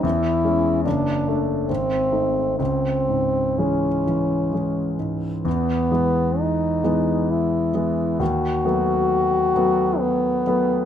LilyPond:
<<
  \new Staff \with { instrumentName = "French horn" } { \time 3/4 \key cis \minor \tempo 4 = 66 e'4 d'8 r8 bis4 | bis4 cis'4. r8 | \key e \major b4 dis'4 e'4 | fis'2 b4 | }
  \new Staff \with { instrumentName = "Grand piano" } { \clef bass \time 3/4 \key cis \minor e,8 <gis cis'>8 fis,,8 <a d'>8 gis,,8 <a dis'>8 | cis,8 gis,8 <e gis cis'>8 e8 <e gis cis'>8 gis,8 | \key e \major e,8 <e gis b>4 <e gis b>4 <e gis b>8 | dis,8 <fis a b>4 <fis a b>4 <fis a b>8 | }
>>